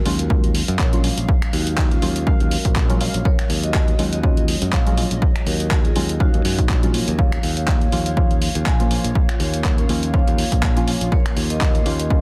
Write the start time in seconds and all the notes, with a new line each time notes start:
Already playing: F#3 G#3 C#5 F5, impact
0.05 D#2 F#3 G#3 C#4 F4, open hi-hat
0.19 F#4 A#4, closed hi-hat
0.30 F#3 G#3 C#4 F4, kick
0.44 closed hi-hat
0.55 open hi-hat
0.68 F#2, closed hi-hat
0.79 A#1 A#4 C#5, kick, clap
0.93 F#3 G#3 C#4 F4, closed hi-hat
1.04 F#3 G#3 C#4 F4, open hi-hat
1.18 A#1, closed hi-hat
1.28 kick
1.42 finger snap, closed hi-hat
1.53 D#2 D#4 F#4, open hi-hat
1.67 closed hi-hat
1.77 kick, clap
1.91 C#4 F4, closed hi-hat
2.02 D#2 F#3 G#3 C#4 F4, open hi-hat
2.16 closed hi-hat
2.27 F#3 G#3 C#4 F#4 A#4 F5, kick
2.40 D#2, closed hi-hat
2.51 open hi-hat
2.65 A#1, kick, closed hi-hat
2.76 kick, clap
2.90 F#3 G#3 C#4 F4, closed hi-hat
3.01 F#3 G#3 C#4 F5, open hi-hat
3.14 A#1, closed hi-hat
3.25 A#4 C#5 D#5, kick
3.39 finger snap, closed hi-hat
3.50 D#2, open hi-hat
3.63 F#4 D#5, closed hi-hat
3.74 kick, clap
3.88 closed hi-hat
3.99 D#2 F#3 G#3 C#4 F4, open hi-hat
4.12 F#4 D#5, closed hi-hat
4.24 F#3 G#3 C#4 F4, kick
4.37 closed hi-hat
4.48 open hi-hat
4.62 F#2, closed hi-hat
4.73 A#1 C#5 F5, kick, clap
4.86 F#3 G#3 C#4 F4, closed hi-hat
4.97 F#3 G#3 C#4 F4, open hi-hat
5.11 A#1, closed hi-hat
5.22 kick
5.36 finger snap, closed hi-hat
5.46 D#2 F#4 A#4, open hi-hat
5.60 closed hi-hat
5.71 kick, clap
5.85 F4 G#4, closed hi-hat
5.96 D#2 F#3 G#3 C#4 F4, open hi-hat
6.09 closed hi-hat
6.20 F#3 G#3 C#4 D#4 F#4 F5, kick
6.34 D#2, closed hi-hat
6.45 F#2, open hi-hat
6.58 A#1, kick, closed hi-hat
6.69 kick, clap
6.83 F#3 G#3 C#4 F4, closed hi-hat
6.94 F3 A#3 C#4 F4, open hi-hat
7.08 D#2, closed hi-hat
7.19 A#3 F4 C#5 F5, kick
7.32 finger snap, closed hi-hat
7.43 D#2, open hi-hat
7.57 C#5 F5, closed hi-hat
7.68 kick, clap
7.81 closed hi-hat
7.92 D#2 F3 A#3 C#4 F4, open hi-hat
8.06 C#5 F5, closed hi-hat
8.17 F3 A#3 C#4 F4, kick
8.31 closed hi-hat
8.42 open hi-hat
8.55 D#2, closed hi-hat
8.66 A#1 F5 G#5, kick, clap
8.80 F3 A#3 C#4 F4, closed hi-hat
8.91 F3 A#3 C#4 F4, open hi-hat
9.04 A#1, closed hi-hat
9.15 kick
9.29 finger snap, closed hi-hat
9.40 D#2 A#4 C#5, open hi-hat
9.54 closed hi-hat
9.64 kick, clap
9.78 C#4 A#4, closed hi-hat
9.89 D#2 F3 A#3 C#4 F4, open hi-hat
10.03 closed hi-hat
10.14 F3 A#3 C#4 F4 C#5 F5, kick
10.27 D#2, closed hi-hat
10.38 open hi-hat
10.52 A#1, kick, closed hi-hat
10.63 kick, clap
10.77 F3 A#3 C#4 F4, closed hi-hat
10.87 F3 A#3 C#4 F4, open hi-hat
11.01 A#1, closed hi-hat
11.12 A#4 C#5, kick
11.26 finger snap, closed hi-hat
11.37 D#2, open hi-hat
11.50 A#4 D#5, closed hi-hat
11.61 kick, clap
11.75 closed hi-hat
11.86 D#2 F3 A#3 C#4 F4, open hi-hat
11.99 A#4 D#5, closed hi-hat
12.10 F3 A#3 C#4 F4, kick